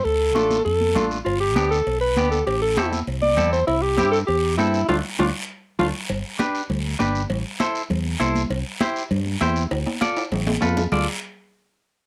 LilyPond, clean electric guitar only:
\new Staff \with { instrumentName = "Clean electric guitar" } { \time 4/4 \key d \dorian \tempo 4 = 199 r4 <a d' f'>8 r4. <a d' f'>8 r8 | r4 <b d' g'>8 r4. <b d' g'>8 r8 | r4 <c' e' a'>8 r4. <c' e' a'>8 r8 | r4 <c' e' g'>8 r4. <c' e' a'>8 r8 |
<a d' f'>8 r8 <a d' f'>8 r4. <a d' f'>8 r8 | r4 <d' g' b'>8 r4. <d' g' b'>8 r8 | r4 <e' a' c''>8 r4. <e' a' c''>8 r8 | r4 <e' g' c''>8 r4. <e' g' c''>8 r8 |
r4 <f' a' d''>8 r4. <f' a' b'>8 r8 | <f' a' d''>8 r2. r8 | }